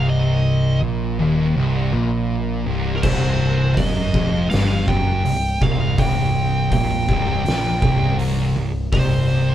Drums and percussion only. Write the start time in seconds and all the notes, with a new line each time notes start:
3.03 kick, crash
3.77 kick, open hi-hat
4.14 kick
4.51 snare, open hi-hat
4.88 kick
5.25 open hi-hat
5.62 kick
5.98 kick, open hi-hat
6.72 kick, open hi-hat
7.09 kick
7.46 snare, open hi-hat
7.82 kick
8.19 open hi-hat
8.93 kick, open hi-hat